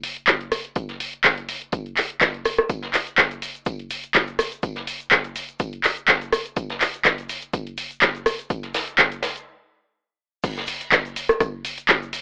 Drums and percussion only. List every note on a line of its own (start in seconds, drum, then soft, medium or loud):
0.03 open hi-hat loud
0.03 tambourine medium
0.17 closed hi-hat soft
0.27 kick loud
0.27 snare loud
0.27 clap loud
0.27 closed hi-hat medium
0.27 tambourine medium
0.41 closed hi-hat soft
0.52 cross-stick medium
0.52 open hi-hat loud
0.52 tambourine medium
0.65 closed hi-hat soft
0.75 kick loud
0.75 closed hi-hat medium
0.75 tambourine medium
0.89 snare soft
0.89 closed hi-hat soft
1.00 open hi-hat loud
1.00 tambourine medium
1.13 closed hi-hat soft
1.24 kick loud
1.24 snare loud
1.24 clap loud
1.24 closed hi-hat medium
1.24 tambourine medium
1.38 closed hi-hat soft
1.49 open hi-hat loud
1.49 tambourine medium
1.62 closed hi-hat soft
1.72 kick loud
1.72 closed hi-hat medium
1.72 tambourine medium
1.86 closed hi-hat soft
1.97 clap medium
1.97 open hi-hat loud
1.97 tambourine medium
2.10 closed hi-hat soft
2.21 kick loud
2.21 snare loud
2.21 clap loud
2.21 closed hi-hat medium
2.21 tambourine medium
2.34 closed hi-hat soft
2.45 cross-stick medium
2.45 open hi-hat loud
2.45 tambourine medium
2.58 cross-stick medium
2.69 kick loud
2.69 closed hi-hat medium
2.69 tambourine medium
2.69 shaker medium
2.82 snare medium
2.82 closed hi-hat soft
2.94 clap medium
2.94 open hi-hat loud
2.94 tambourine medium
2.94 shaker medium
3.07 closed hi-hat soft
3.07 shaker soft
3.18 kick loud
3.18 snare loud
3.18 clap loud
3.18 closed hi-hat medium
3.18 tambourine medium
3.18 shaker medium
3.31 closed hi-hat soft
3.31 shaker soft
3.42 open hi-hat loud
3.42 tambourine medium
3.42 shaker medium
3.55 closed hi-hat soft
3.55 shaker soft
3.66 kick loud
3.66 closed hi-hat medium
3.66 tambourine medium
3.66 shaker medium
3.79 closed hi-hat soft
3.91 open hi-hat loud
3.91 tambourine medium
3.91 shaker medium
4.03 closed hi-hat soft
4.03 shaker soft
4.14 kick loud
4.14 snare loud
4.14 clap loud
4.14 closed hi-hat medium
4.14 tambourine medium
4.14 shaker medium
4.27 closed hi-hat soft
4.27 shaker soft
4.39 cross-stick medium
4.39 open hi-hat loud
4.39 tambourine medium
4.39 shaker medium
4.52 closed hi-hat soft
4.52 shaker soft
4.63 kick loud
4.63 closed hi-hat medium
4.63 tambourine medium
4.63 shaker soft
4.76 snare soft
4.76 closed hi-hat soft
4.87 open hi-hat loud
4.87 tambourine medium
4.87 shaker medium
5.00 closed hi-hat soft
5.00 shaker soft
5.11 kick loud
5.11 snare loud
5.11 clap loud
5.11 closed hi-hat medium
5.11 tambourine medium
5.11 shaker soft
5.24 closed hi-hat soft
5.24 shaker soft
5.36 open hi-hat loud
5.36 tambourine medium
5.36 shaker medium
5.49 closed hi-hat soft
5.49 shaker soft
5.59 kick loud
5.59 closed hi-hat medium
5.59 tambourine medium
5.59 shaker soft
5.73 closed hi-hat soft
5.84 clap medium
5.84 open hi-hat loud
5.84 tambourine medium
5.84 shaker medium
5.97 shaker soft
6.08 kick loud
6.08 snare loud
6.08 clap loud
6.08 closed hi-hat medium
6.08 tambourine medium
6.08 shaker soft
6.21 closed hi-hat soft
6.21 shaker soft
6.32 cross-stick medium
6.32 open hi-hat loud
6.32 tambourine medium
6.32 shaker medium
6.45 closed hi-hat soft
6.45 shaker soft
6.56 kick loud
6.56 closed hi-hat medium
6.56 tambourine medium
6.56 shaker soft
6.70 snare medium
6.70 closed hi-hat soft
6.81 clap medium
6.81 open hi-hat loud
6.81 tambourine medium
6.81 shaker medium
6.94 closed hi-hat soft
6.94 shaker soft
7.05 kick loud
7.05 snare loud
7.05 clap loud
7.05 closed hi-hat medium
7.05 tambourine medium
7.05 shaker soft
7.18 closed hi-hat soft
7.18 shaker soft
7.29 open hi-hat loud
7.29 tambourine medium
7.29 shaker medium
7.42 closed hi-hat soft
7.42 shaker soft
7.53 kick loud
7.53 closed hi-hat loud
7.53 tambourine medium
7.53 shaker soft
7.67 closed hi-hat soft
7.78 open hi-hat loud
7.78 tambourine medium
7.78 shaker medium
7.91 closed hi-hat soft
7.91 shaker soft
8.02 kick loud
8.02 snare loud
8.02 clap loud
8.02 closed hi-hat medium
8.02 tambourine medium
8.02 shaker soft
8.15 closed hi-hat soft
8.15 shaker soft
8.26 cross-stick medium
8.26 open hi-hat loud
8.26 tambourine medium
8.26 shaker medium
8.39 closed hi-hat soft
8.39 shaker soft
8.50 kick loud
8.50 closed hi-hat medium
8.50 tambourine medium
8.50 shaker medium
8.63 snare soft
8.63 closed hi-hat soft
8.74 snare loud
8.74 open hi-hat loud
8.74 tambourine medium
8.74 shaker medium
8.88 closed hi-hat soft
8.88 shaker soft
8.98 kick loud
8.98 snare loud
8.98 clap loud
8.98 closed hi-hat loud
8.98 tambourine medium
8.98 shaker soft
9.12 closed hi-hat soft
9.12 shaker soft
9.22 snare loud
9.22 open hi-hat loud
9.22 tambourine medium
9.22 shaker medium
9.36 closed hi-hat soft
9.36 shaker soft
10.44 kick loud
10.44 closed hi-hat medium
10.44 tambourine medium
10.44 crash loud
10.44 shaker medium
10.57 snare medium
10.57 closed hi-hat soft
10.67 open hi-hat loud
10.67 tambourine medium
10.67 shaker medium
10.80 closed hi-hat soft
10.80 closed hi-hat medium
10.80 shaker soft
10.92 kick loud
10.92 snare loud
10.92 clap loud
10.92 closed hi-hat medium
10.92 tambourine medium
10.92 shaker medium
11.05 closed hi-hat soft
11.05 shaker soft
11.16 open hi-hat loud
11.16 tambourine medium
11.16 shaker loud
11.29 cross-stick medium
11.29 closed hi-hat medium
11.29 shaker soft
11.40 kick loud
11.40 cross-stick medium
11.40 closed hi-hat medium
11.40 tambourine medium
11.40 shaker medium
11.65 open hi-hat loud
11.65 tambourine medium
11.65 shaker loud
11.78 closed hi-hat medium
11.78 shaker soft
11.89 kick loud
11.89 snare loud
11.89 clap loud
11.89 closed hi-hat medium
11.89 tambourine medium
11.89 shaker medium
12.02 shaker soft
12.13 open hi-hat loud
12.13 tambourine medium
12.13 shaker medium